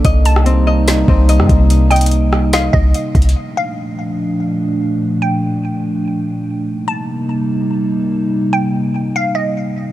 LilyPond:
<<
  \new Staff \with { instrumentName = "Synth pluck" } { \time 4/4 \key bes \major \tempo 4 = 145 r8 a''2~ a''8 r4 | r8 g''4. f''8 ees''4. | r8 f''2~ f''8 r4 | r8 g''2~ g''8 r4 |
r8 a''2~ a''8 r4 | r8 g''4. f''8 ees''4. | }
  \new Staff \with { instrumentName = "Harp" } { \time 4/4 \key bes \major ees''4 c'8 ees''4 c'8 ees''4~ | ees''8 ees''4. ees''2 | r1 | r1 |
r1 | r1 | }
  \new Staff \with { instrumentName = "Analog synth pad" } { \clef bass \time 4/4 \key bes \major <c g bes ees'>1~ | <c g bes ees'>1 | <bes, f a d'>1~ | <bes, f a d'>1 |
<c g bes ees'>1~ | <c g bes ees'>1 | }
  \new Staff \with { instrumentName = "808-style bass" } { \clef bass \time 4/4 \key bes \major c,2~ c,8 c,8. g,16 c,8~ | c,2~ c,8 c,8 r8 c,8 | r1 | r1 |
r1 | r1 | }
  \new DrumStaff \with { instrumentName = "Drums" } \drummode { \time 4/4 <hh bd>8 hh16 ss16 hh4 <hh sn>8 bd8 hh16 ss16 <hh bd>8 | hh8 hh32 hh32 hh32 hh32 hh8 ss8 <hh sn>8 bd8 \tuplet 3/2 { hh16 r16 r16 <hh bd>16 hh16 hh16 } | r4 r4 r4 r4 | r4 r4 r4 r4 |
r4 r4 r4 r4 | r4 r4 r4 r4 | }
>>